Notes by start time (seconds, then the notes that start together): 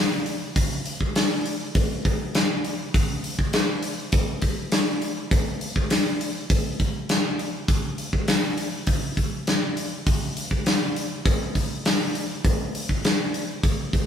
0.26 open hi-hat
0.56 kick, open hi-hat
0.86 open hi-hat
1.01 kick
1.16 snare, open hi-hat
1.46 open hi-hat
1.75 kick, open hi-hat
2.05 kick, open hi-hat
2.35 snare, open hi-hat
2.65 open hi-hat
2.94 kick, open hi-hat
3.24 open hi-hat
3.39 kick
3.53 snare, open hi-hat
3.83 open hi-hat
4.12 kick, open hi-hat
4.42 kick, open hi-hat
4.72 snare, open hi-hat
5.02 open hi-hat
5.31 kick, open hi-hat
5.61 open hi-hat
5.76 kick
5.90 snare, open hi-hat
6.21 open hi-hat
6.50 kick, open hi-hat
6.80 kick, open hi-hat
7.09 snare, open hi-hat
7.39 open hi-hat
7.68 kick, open hi-hat
7.98 open hi-hat
8.13 kick
8.28 snare, open hi-hat
8.58 open hi-hat
8.87 kick, open hi-hat
9.17 kick, open hi-hat
9.47 snare, open hi-hat
9.77 open hi-hat
10.07 kick, open hi-hat
10.37 open hi-hat
10.51 kick
10.66 snare, open hi-hat
10.96 open hi-hat
11.26 kick, open hi-hat
11.55 kick, open hi-hat
11.85 snare, open hi-hat
12.15 open hi-hat
12.45 kick, open hi-hat
12.75 open hi-hat
12.89 kick
13.05 snare, open hi-hat
13.34 open hi-hat
13.63 kick, open hi-hat
13.93 kick, open hi-hat